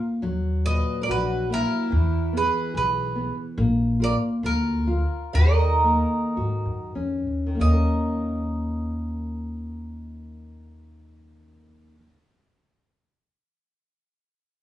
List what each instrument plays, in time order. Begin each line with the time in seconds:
Already playing: nylon-string guitar A#3 F4
0.22 upright bass D#2, nylon-string guitar F#3
0.64 nylon-string guitar A#2, twelve-string acoustic guitar B4, mandolin D#5
1.01 twelve-string acoustic guitar A#4, mandolin D5
1.08 upright bass A#1, nylon-string guitar F#4, twelve-string acoustic guitar F#4, mandolin B4
1.50 nylon-string guitar A#3, twelve-string acoustic guitar E4
1.54 mandolin A#4
1.90 upright bass E2, nylon-string guitar E3
2.33 nylon-string guitar B3, twelve-string acoustic guitar G#4
2.37 mandolin B4
2.74 upright bass B1, nylon-string guitar G#4, twelve-string acoustic guitar G#4, mandolin B4
3.15 nylon-string guitar B3
3.58 upright bass A#1, nylon-string guitar A#3
4.00 nylon-string guitar F4, twelve-string acoustic guitar A#4, mandolin D5
4.43 upright bass D2, nylon-string guitar A#3, twelve-string acoustic guitar F4, mandolin A#4
4.87 nylon-string guitar F4
5.33 upright bass D#2, nylon-string guitar D#3, twelve-string acoustic guitar A#4, mandolin D#5
5.84 nylon-string guitar A#3
6.37 upright bass G#2, nylon-string guitar F#4
6.66 upright bass F#2
6.95 upright bass F2, nylon-string guitar C#4
7.27 upright bass D#2
7.47 nylon-string guitar D#3
7.55 nylon-string guitar A#3
7.60 upright bass D#2, twelve-string acoustic guitar A#3, mandolin D#5
7.64 nylon-string guitar C#4
7.73 nylon-string guitar A#4